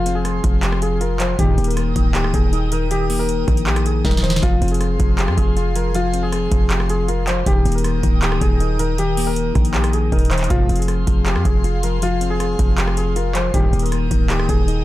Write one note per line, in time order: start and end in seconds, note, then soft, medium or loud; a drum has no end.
0.00 0.40 F1 loud
0.00 0.43 F3 loud
0.00 0.14 F4 loud
0.00 0.44 F4 loud
0.00 1.36 G#4 medium
0.00 1.36 F5 medium
0.00 1.36 C6 medium
0.06 1.01 C4 medium
0.06 closed hi-hat medium
0.15 0.60 G#4 medium
0.25 cross-stick medium
0.25 closed hi-hat medium
0.44 1.35 F1 loud
0.44 1.19 F3 medium
0.44 kick loud
0.44 closed hi-hat medium
0.63 0.78 G4 medium
0.63 clap loud
0.63 closed hi-hat medium
0.72 cross-stick loud
0.82 0.97 G#4 medium
0.82 closed hi-hat medium
1.01 1.39 F4 loud
1.01 1.16 A#4 medium
1.01 closed hi-hat medium
1.20 1.38 F3 medium
1.20 1.35 C5 medium
1.20 clap loud
1.20 closed hi-hat loud
1.39 1.57 D#1 loud
1.39 1.55 G2 loud
1.39 1.55 A#2 loud
1.39 1.55 D#3 loud
1.39 1.95 D#3 loud
1.39 1.66 G4 loud
1.39 4.40 A#4 medium
1.39 4.40 G5 medium
1.39 4.40 D#6 medium
1.39 kick loud
1.39 closed hi-hat loud
1.58 1.94 D#1 loud
1.58 2.53 A#3 medium
1.58 closed hi-hat medium
1.64 2.12 A#4 medium
1.64 closed hi-hat medium
1.71 closed hi-hat medium
1.77 cross-stick medium
1.77 closed hi-hat medium
1.96 2.32 D1 loud
1.96 2.71 D#3 medium
1.96 kick medium
1.96 closed hi-hat medium
2.15 2.30 G4 medium
2.15 clap loud
2.15 closed hi-hat medium
2.24 cross-stick medium
2.34 3.44 D#1 loud
2.34 2.70 G#4 medium
2.34 kick loud
2.34 closed hi-hat medium
2.53 3.48 D#4 loud
2.53 closed hi-hat medium
2.72 2.90 D#3 medium
2.72 2.87 A#4 medium
2.72 closed hi-hat loud
2.91 3.47 D#3 medium
2.91 3.18 G4 loud
2.91 closed hi-hat medium
3.10 4.05 A#3 medium
3.10 open hi-hat medium
3.19 3.64 A#4 medium
3.29 closed hi-hat medium
3.48 4.02 A#1 loud
3.48 4.22 D#3 medium
3.48 kick medium
3.48 closed hi-hat medium
3.57 closed hi-hat medium
3.67 3.82 G4 medium
3.67 clap loud
3.67 closed hi-hat soft
3.76 cross-stick loud
3.76 closed hi-hat medium
3.86 4.01 G#4 medium
3.86 closed hi-hat medium
4.05 4.41 D#1 loud
4.05 4.43 D#4 medium
4.05 4.20 A#4 medium
4.05 kick medium
4.05 snare medium
4.05 closed hi-hat soft
4.11 snare medium
4.11 closed hi-hat medium
4.17 snare medium
4.17 closed hi-hat medium
4.23 4.42 D#3 medium
4.23 4.38 C5 medium
4.23 snare medium
4.23 closed hi-hat medium
4.30 snare loud
4.30 closed hi-hat medium
4.36 snare loud
4.36 closed hi-hat medium
4.43 4.61 F1 loud
4.43 4.98 F3 medium
4.43 4.70 F4 loud
4.43 7.43 G#4 medium
4.43 7.43 F5 medium
4.43 7.43 C6 medium
4.43 kick loud
4.43 closed hi-hat medium
4.62 4.98 F1 loud
4.62 5.57 C4 medium
4.62 closed hi-hat medium
4.68 5.16 G#4 medium
4.68 closed hi-hat medium
4.74 closed hi-hat medium
4.81 cross-stick medium
4.81 closed hi-hat medium
5.00 5.30 F1 loud
5.00 5.74 F3 medium
5.00 kick loud
5.00 closed hi-hat medium
5.19 5.34 G4 medium
5.19 clap loud
5.19 closed hi-hat medium
5.28 5.37 F2 loud
5.28 cross-stick loud
5.37 6.48 F1 loud
5.37 5.73 G#4 medium
5.37 kick loud
5.37 closed hi-hat medium
5.57 6.52 F4 loud
5.57 closed hi-hat medium
5.76 5.93 F3 medium
5.76 5.91 A#4 medium
5.76 closed hi-hat loud
5.95 6.50 F3 loud
5.95 6.22 F4 loud
5.95 closed hi-hat loud
6.14 7.08 C4 medium
6.14 closed hi-hat medium
6.23 6.68 G#4 medium
6.32 cross-stick medium
6.32 closed hi-hat medium
6.52 7.43 F1 loud
6.52 7.26 F3 medium
6.52 kick loud
6.52 closed hi-hat medium
6.70 6.85 G4 medium
6.70 clap loud
6.70 closed hi-hat medium
6.80 cross-stick loud
6.89 7.05 G#4 medium
6.89 closed hi-hat medium
7.08 7.46 F4 loud
7.08 7.24 A#4 medium
7.08 closed hi-hat medium
7.27 7.46 F3 medium
7.27 7.43 C5 medium
7.27 clap medium
7.27 closed hi-hat loud
7.46 7.65 D#1 loud
7.46 8.02 D#3 medium
7.46 7.74 G4 loud
7.46 10.47 A#4 medium
7.46 10.47 G5 medium
7.46 10.47 D#6 medium
7.46 kick loud
7.46 closed hi-hat loud
7.65 8.02 D#1 loud
7.65 8.60 A#3 medium
7.65 closed hi-hat medium
7.72 8.20 A#4 medium
7.72 closed hi-hat medium
7.78 closed hi-hat medium
7.84 cross-stick medium
7.84 closed hi-hat medium
8.03 8.40 D1 loud
8.03 8.78 D#3 medium
8.03 kick loud
8.03 closed hi-hat medium
8.22 8.38 G4 medium
8.22 clap loud
8.22 closed hi-hat medium
8.32 cross-stick loud
8.41 9.51 D#1 loud
8.41 8.77 G#4 medium
8.41 kick loud
8.41 closed hi-hat medium
8.60 9.55 D#4 loud
8.60 closed hi-hat medium
8.79 8.97 D#3 medium
8.79 8.95 A#4 medium
8.79 closed hi-hat loud
8.98 9.54 D#3 medium
8.98 9.25 G4 loud
8.98 closed hi-hat loud
9.17 10.12 A#3 medium
9.17 open hi-hat medium
9.27 9.71 A#4 loud
9.36 closed hi-hat medium
9.55 10.10 A#1 loud
9.55 10.30 D#3 medium
9.55 kick loud
9.55 closed hi-hat medium
9.65 closed hi-hat medium
9.74 9.90 G4 medium
9.74 clap loud
9.74 closed hi-hat soft
9.84 cross-stick medium
9.84 closed hi-hat medium
9.93 10.09 G#4 medium
9.93 closed hi-hat medium
10.12 10.49 D#1 loud
10.12 10.50 D#4 medium
10.12 10.28 A#4 medium
10.12 kick medium
10.12 closed hi-hat soft
10.19 closed hi-hat medium
10.25 closed hi-hat medium
10.31 10.50 D#3 medium
10.31 10.46 C5 medium
10.31 clap loud
10.31 closed hi-hat medium
10.38 clap medium
10.38 closed hi-hat medium
10.44 closed hi-hat medium
10.50 10.68 F1 loud
10.50 10.66 G#2 loud
10.50 10.66 C3 loud
10.50 11.06 F3 medium
10.50 10.66 F3 loud
10.50 10.77 F4 loud
10.50 13.51 G#4 medium
10.50 13.51 F5 medium
10.50 13.51 C6 medium
10.50 kick loud
10.50 closed hi-hat medium
10.69 11.06 F1 loud
10.69 11.64 C4 medium
10.69 closed hi-hat medium
10.76 11.24 G#4 medium
10.76 closed hi-hat medium
10.82 closed hi-hat medium
10.88 cross-stick medium
10.88 closed hi-hat medium
11.07 11.37 F1 loud
11.07 11.82 F3 medium
11.07 kick loud
11.07 closed hi-hat medium
11.26 11.41 G4 medium
11.26 clap loud
11.26 closed hi-hat medium
11.36 11.45 F2 loud
11.36 cross-stick loud
11.45 12.55 F1 loud
11.45 11.81 G#4 medium
11.45 kick loud
11.45 closed hi-hat medium
11.64 12.59 F4 loud
11.64 closed hi-hat medium
11.83 12.01 F3 medium
11.83 11.98 A#4 medium
11.83 closed hi-hat loud
12.02 12.58 F3 loud
12.02 12.29 F4 loud
12.02 closed hi-hat loud
12.21 13.16 C4 medium
12.21 closed hi-hat medium
12.30 12.75 G#4 medium
12.40 cross-stick medium
12.40 closed hi-hat medium
12.59 13.50 F1 loud
12.59 13.34 F3 medium
12.59 kick loud
12.59 closed hi-hat medium
12.78 12.93 G4 medium
12.78 clap loud
12.78 closed hi-hat medium
12.88 cross-stick loud
12.97 13.12 G#4 medium
12.97 closed hi-hat medium
13.16 13.54 F4 loud
13.16 13.31 A#4 medium
13.16 closed hi-hat medium
13.35 13.54 F3 medium
13.35 13.50 C5 medium
13.35 clap medium
13.35 closed hi-hat loud
13.54 13.72 D#1 loud
13.54 13.70 G2 loud
13.54 13.70 A#2 loud
13.54 14.10 D#3 medium
13.54 13.70 D#3 loud
13.54 13.81 G4 loud
13.54 14.84 A#4 medium
13.54 14.84 G5 medium
13.54 14.84 D#6 medium
13.54 kick loud
13.54 closed hi-hat loud
13.73 14.09 D#1 loud
13.73 14.68 A#3 medium
13.73 closed hi-hat medium
13.79 14.27 A#4 medium
13.79 closed hi-hat medium
13.86 closed hi-hat medium
13.92 cross-stick medium
13.92 closed hi-hat medium
14.11 14.47 D1 loud
14.11 14.84 D#3 medium
14.11 kick loud
14.11 closed hi-hat medium
14.30 14.45 G4 medium
14.30 clap loud
14.30 closed hi-hat medium
14.39 cross-stick loud
14.49 14.84 D#1 loud
14.49 14.84 G#4 medium
14.49 kick loud
14.49 closed hi-hat medium
14.68 14.84 D#4 loud
14.68 closed hi-hat medium